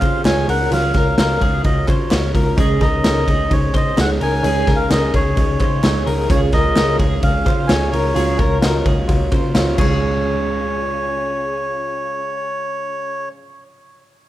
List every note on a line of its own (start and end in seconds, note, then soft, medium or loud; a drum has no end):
0.00 0.21 C#3 loud
0.00 0.25 C#4 loud
0.00 0.25 F4 medium
0.00 0.26 F4 medium
0.00 0.25 G#4 medium
0.00 0.25 C5 medium
0.00 0.26 C#5 loud
0.00 0.22 F5 loud
0.00 kick medium
0.00 clap medium
0.00 ride medium
0.05 0.25 C#4 soft
0.25 0.44 C#2 loud
0.25 0.48 G#3 medium
0.25 0.66 C#4 medium
0.25 0.49 C#4 medium
0.25 0.66 F4 medium
0.25 0.49 F4 medium
0.25 0.66 G#4 medium
0.25 0.47 G#4 medium
0.25 0.48 C#5 medium
0.25 0.67 C#5 medium
0.25 0.47 G#5 loud
0.25 snare loud
0.25 clap medium
0.25 ride medium
0.48 0.67 C#2 loud
0.48 0.72 C#4 soft
0.48 0.72 F4 medium
0.48 0.71 G#4 medium
0.48 0.72 A#4 medium
0.48 0.71 F#5 loud
0.48 open hi-hat medium
0.48 ride medium
0.71 0.90 C#2 loud
0.71 0.95 C#3 medium
0.71 0.95 F#3 medium
0.71 0.96 C#4 medium
0.71 1.13 F4 loud
0.71 0.94 F4 loud
0.71 1.13 F#4 medium
0.71 0.95 G#4 loud
0.71 1.14 A#4 medium
0.71 0.92 A#4 medium
0.71 1.14 C#5 loud
0.71 1.16 F5 loud
0.71 hi-hat pedal medium
0.71 ride medium
0.94 1.14 C#2 medium
0.94 1.17 C#4 soft
0.94 1.18 F4 medium
0.94 1.18 A#4 medium
0.94 kick loud
0.94 snare soft
0.94 ride medium
1.17 1.37 C#2 loud
1.17 1.88 F#3 medium
1.17 1.89 C#4 medium
1.17 1.60 F4 medium
1.17 1.87 F4 medium
1.17 1.60 F#4 medium
1.17 1.60 A#4 medium
1.17 1.42 A#4 medium
1.17 1.85 A#4 medium
1.17 1.60 C#5 medium
1.17 1.62 F5 loud
1.17 snare loud
1.17 clap medium
1.17 ride medium
1.41 1.60 C#2 loud
1.41 1.86 G#4 medium
1.41 kick medium
1.41 ride medium
1.64 1.84 C#2 loud
1.64 2.07 F4 medium
1.64 2.07 F#4 medium
1.64 2.07 A#4 medium
1.64 2.07 C#5 medium
1.64 1.86 D#5 medium
1.64 kick loud
1.64 ride medium
1.87 2.07 C#3 loud
1.87 2.10 C#4 soft
1.87 2.11 F4 medium
1.87 2.11 A#4 medium
1.87 2.12 C5 medium
1.87 2.32 C#5 medium
1.87 kick medium
1.87 clap medium
1.87 ride medium
2.10 2.30 C#2 loud
2.10 2.34 F#3 medium
2.10 2.34 C#4 medium
2.10 2.53 F4 medium
2.10 2.33 F4 medium
2.10 2.53 F#4 medium
2.10 2.53 A#4 medium
2.10 2.31 A#4 medium
2.10 2.34 C#5 medium
2.10 2.53 C#5 medium
2.10 snare loud
2.10 clap medium
2.10 ride medium
2.32 2.54 C#2 loud
2.32 2.57 C#4 soft
2.32 2.58 F4 medium
2.32 2.57 A#4 medium
2.32 2.58 A#4 medium
2.32 kick loud
2.32 open hi-hat medium
2.32 ride medium
2.56 2.77 C#2 loud
2.56 2.80 C#3 medium
2.56 6.26 C#3 medium
2.56 2.81 G#3 medium
2.56 2.98 C#4 loud
2.56 6.26 C#4 medium
2.56 2.81 C#4 medium
2.56 2.99 D#4 medium
2.56 4.42 D#4 medium
2.56 2.81 D#4 medium
2.56 2.99 G#4 medium
2.56 8.12 G#4 medium
2.56 2.81 G#4 loud
2.56 2.79 G#4 medium
2.56 2.99 C#5 loud
2.56 2.80 D#5 medium
2.56 kick loud
2.56 hi-hat pedal medium
2.56 ride medium
2.80 3.00 C#2 loud
2.80 3.03 C#4 soft
2.80 3.04 D#4 medium
2.80 3.04 G#4 medium
2.80 3.03 A#4 medium
2.80 3.53 D#5 loud
2.80 kick loud
2.80 snare soft
2.80 ride medium
3.03 3.24 C#2 loud
3.03 3.96 G#3 medium
3.03 3.45 C#4 medium
3.03 3.76 C#4 medium
3.03 3.45 D#4 medium
3.03 3.74 D#4 medium
3.03 3.45 G#4 medium
3.03 3.73 G#4 medium
3.03 3.28 A#4 medium
3.03 3.45 C#5 medium
3.03 snare loud
3.03 clap medium
3.03 ride medium
3.28 3.47 C#2 loud
3.28 3.72 G#4 medium
3.28 kick medium
3.28 ride medium
3.50 3.70 C#2 loud
3.50 3.92 C#4 medium
3.50 3.92 D#4 medium
3.50 3.92 G#4 medium
3.50 3.92 C5 medium
3.50 3.76 C#5 medium
3.50 kick loud
3.50 ride medium
3.73 3.93 C#3 medium
3.73 3.97 C#4 soft
3.73 3.97 D#4 soft
3.73 3.97 G#4 medium
3.73 3.98 C5 medium
3.73 3.99 D#5 loud
3.73 kick medium
3.73 clap medium
3.73 ride medium
3.96 4.17 C#2 loud
3.96 4.20 G#3 medium
3.96 4.38 C#4 medium
3.96 4.21 C#4 medium
3.96 4.38 D#4 medium
3.96 4.21 D#4 medium
3.96 4.38 G#4 medium
3.96 4.19 G#4 medium
3.96 4.20 C#5 medium
3.96 4.39 C#5 medium
3.96 4.10 F#5 loud
3.96 snare loud
3.96 clap medium
3.96 ride medium
4.20 4.40 C#2 loud
4.20 4.45 C#4 medium
4.20 4.45 D#4 medium
4.20 4.44 G#4 medium
4.20 4.44 A#4 medium
4.20 4.77 G#5 loud
4.20 open hi-hat medium
4.20 ride medium
4.43 4.63 C#2 loud
4.43 4.68 C#3 medium
4.43 4.68 G#3 medium
4.43 4.85 C#4 loud
4.43 4.68 C#4 medium
4.43 4.85 D#4 loud
4.43 4.67 D#4 medium
4.43 4.85 G#4 medium
4.43 4.68 G#4 loud
4.43 4.65 G#4 loud
4.43 4.85 C#5 loud
4.43 9.74 F5 medium
4.43 hi-hat pedal medium
4.43 ride medium
4.67 4.86 C#2 medium
4.67 4.90 C#4 soft
4.67 4.91 D#4 medium
4.67 4.90 G#4 medium
4.67 4.89 A#4 medium
4.67 kick loud
4.67 snare soft
4.67 ride medium
4.76 4.90 F5 loud
4.89 5.09 C#2 loud
4.89 5.83 G#3 medium
4.89 5.31 C#4 medium
4.89 5.62 C#4 medium
4.89 5.31 D#4 medium
4.89 5.60 D#4 medium
4.89 5.32 G#4 medium
4.89 5.59 G#4 medium
4.89 5.14 A#4 medium
4.89 5.32 C#5 medium
4.89 5.13 D#5 loud
4.89 snare loud
4.89 clap medium
4.89 ride medium
5.14 5.33 C#2 medium
5.14 5.58 G#4 medium
5.14 6.04 C#5 loud
5.14 kick medium
5.14 ride medium
5.36 5.56 C#2 medium
5.36 5.78 C#4 medium
5.36 5.78 D#4 medium
5.36 5.78 G#4 medium
5.36 5.78 D#5 medium
5.36 kick loud
5.36 ride medium
5.59 5.80 C#3 loud
5.59 5.83 C#4 soft
5.59 5.84 D#4 medium
5.59 5.83 G#4 medium
5.59 5.84 C5 medium
5.59 kick medium
5.59 clap medium
5.59 ride medium
5.83 6.03 C#2 loud
5.83 6.07 G#3 medium
5.83 6.25 C#4 medium
5.83 6.07 C#4 medium
5.83 6.25 D#4 medium
5.83 6.07 D#4 medium
5.83 6.25 G#4 medium
5.83 6.05 G#4 medium
5.83 6.25 C#5 loud
5.83 6.06 C#5 medium
5.83 snare loud
5.83 clap medium
5.83 ride medium
6.06 6.26 C#2 loud
6.06 6.29 C#4 medium
6.06 6.30 D#4 medium
6.06 6.29 G#4 medium
6.06 6.30 A#4 medium
6.06 open hi-hat medium
6.06 ride medium
6.28 6.49 C#2 loud
6.28 6.52 C#3 medium
6.28 8.14 C#3 medium
6.28 6.53 G#3 medium
6.28 8.14 C#4 medium
6.28 6.53 C#4 medium
6.28 6.71 C#4 loud
6.28 6.72 F4 medium
6.28 6.53 F4 loud
6.28 6.53 G#4 loud
6.28 6.51 G#4 loud
6.28 6.72 G#4 loud
6.28 6.41 C#5 loud
6.28 6.72 C#5 loud
6.28 kick loud
6.28 hi-hat pedal medium
6.28 ride medium
6.52 6.72 C#2 loud
6.52 6.75 C#4 soft
6.52 6.75 F4 medium
6.52 6.76 G#4 medium
6.52 6.75 A#4 medium
6.52 6.97 D#5 loud
6.52 kick loud
6.52 snare soft
6.52 ride medium
6.74 6.96 C#2 loud
6.74 7.45 G#3 medium
6.74 7.47 C#4 medium
6.74 7.17 C#4 medium
6.74 7.18 F4 medium
6.74 7.46 F4 medium
6.74 7.18 G#4 medium
6.74 7.43 G#4 medium
6.74 6.99 A#4 medium
6.74 7.18 C#5 medium
6.74 snare loud
6.74 clap medium
6.74 ride medium
6.99 7.19 C#2 loud
6.99 7.43 G#4 medium
6.99 kick medium
6.99 ride medium
7.23 7.42 C#2 loud
7.23 7.64 C#4 medium
7.23 7.64 F4 medium
7.23 7.65 G#4 medium
7.23 7.65 C#5 medium
7.23 7.71 F5 loud
7.23 kick loud
7.23 ride medium
7.45 7.65 C#3 loud
7.45 7.68 C#4 soft
7.45 7.69 F4 medium
7.45 7.69 G#4 medium
7.45 7.69 C5 medium
7.45 kick medium
7.45 clap medium
7.45 ride medium
7.67 7.89 C#2 loud
7.67 7.92 G#3 medium
7.67 7.92 C#4 medium
7.67 8.11 C#4 medium
7.67 8.11 F4 medium
7.67 7.92 F4 medium
7.67 8.11 G#4 medium
7.67 7.92 C#5 medium
7.67 8.11 C#5 medium
7.67 7.90 G#5 loud
7.67 snare loud
7.67 clap medium
7.67 ride medium
7.71 7.90 G#4 medium
7.91 8.12 C#2 loud
7.91 8.15 C#4 soft
7.91 8.16 F4 medium
7.91 8.15 G#4 medium
7.91 8.15 A#4 medium
7.91 8.58 C#5 loud
7.91 open hi-hat medium
7.91 ride medium
8.15 8.35 C#2 loud
8.15 8.39 C#3 medium
8.15 8.39 F#3 medium
8.15 9.77 F#3 medium
8.15 9.77 A#3 medium
8.15 8.39 C#4 medium
8.15 8.57 F4 loud
8.15 8.39 F4 loud
8.15 8.57 F#4 medium
8.15 8.39 G#4 loud
8.15 8.57 A#4 medium
8.15 8.37 A#4 loud
8.15 8.57 C#5 loud
8.15 hi-hat pedal medium
8.15 ride medium
8.38 8.58 C#2 loud
8.38 8.61 C#4 medium
8.38 8.62 F4 medium
8.38 8.62 A#4 medium
8.38 8.61 A#4 medium
8.38 kick loud
8.38 ride medium
8.61 8.81 C#2 loud
8.61 9.31 F#3 medium
8.61 9.34 C#4 medium
8.61 9.03 F4 medium
8.61 9.33 F4 medium
8.61 9.03 F#4 medium
8.61 8.86 A#4 medium
8.61 9.04 A#4 medium
8.61 9.30 A#4 medium
8.61 9.04 D#5 loud
8.61 snare loud
8.61 clap medium
8.61 ride medium
8.86 9.05 C#2 loud
8.86 9.30 G#4 medium
8.86 kick medium
8.86 ride medium
9.08 9.28 C#2 loud
9.08 9.50 F4 medium
9.08 9.50 F#4 medium
9.08 9.50 A#4 medium
9.08 9.50 C#5 loud
9.08 kick loud
9.08 ride medium
9.32 9.51 C#3 loud
9.32 9.55 C#4 soft
9.32 9.56 F4 medium
9.32 9.55 A#4 medium
9.32 9.54 C5 medium
9.32 kick medium
9.32 clap medium
9.32 ride medium
9.55 9.74 C#2 loud
9.55 9.78 F#3 medium
9.55 9.79 C#4 medium
9.55 9.75 F4 medium
9.55 9.80 F4 medium
9.55 9.78 F#4 medium
9.55 9.78 A#4 medium
9.55 9.80 A#4 medium
9.55 9.79 C5 loud
9.55 9.78 C#5 medium
9.55 snare loud
9.55 clap medium
9.55 ride medium
9.73 13.28 C#3 medium
9.73 13.27 F4 medium
9.78 13.29 C#2 loud
9.78 13.29 C#3 medium
9.78 13.34 G#3 medium
9.78 13.28 C#4 medium
9.78 13.29 F4 medium
9.78 11.37 G#4 medium
9.78 13.29 G#4 medium
9.78 13.29 C#5 loud
9.78 13.31 C#5 medium
9.78 kick loud
9.78 clap medium
9.78 crash medium
9.85 13.39 C#4 medium
9.89 13.43 F4 medium
9.94 13.48 G#4 medium